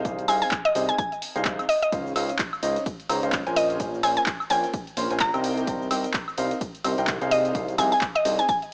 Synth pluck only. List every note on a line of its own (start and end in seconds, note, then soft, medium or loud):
0.28 0.37 G#5 medium
0.42 0.48 G#5 medium
0.65 0.75 D#5 loud
0.89 0.95 G#5 medium
0.98 1.07 G#5 medium
1.69 1.78 D#5 medium
1.82 1.89 D#5 medium
3.56 3.70 D#5 medium
4.03 4.12 G#5 medium
4.17 4.23 G#5 medium
4.50 5.17 G#5 medium
5.20 5.49 A#5 medium
7.31 7.45 D#5 loud
7.78 7.87 G#5 medium
7.92 7.98 G#5 medium
8.15 8.25 D#5 medium
8.39 8.45 G#5 medium
8.49 8.57 G#5 medium